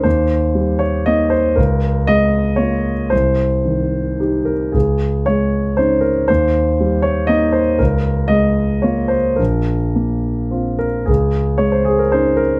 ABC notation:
X:1
M:3/4
L:1/16
Q:1/4=116
K:Bbdor
V:1 name="Grand piano"
c6 d2 e2 c2 | B4 e4 d4 | c8 z2 B2 | A4 d4 c2 B2 |
c6 d2 e2 c2 | B4 e4 d2 c2 | B8- B2 B2 | A4 d c A B c2 B2 |]
V:2 name="Grand piano"
E,,4 G,4 [B,E]4 | D,,4 A,4 [B,F]4 | C,,4 E,4 [EG]4 | D,,4 A,4 [DE]4 |
E,,4 G,4 [B,E]4 | D,,4 A,4 [B,F]4 | B,,,4 B,4 [CF]4 | D,,4 A,4 [DE]4 |]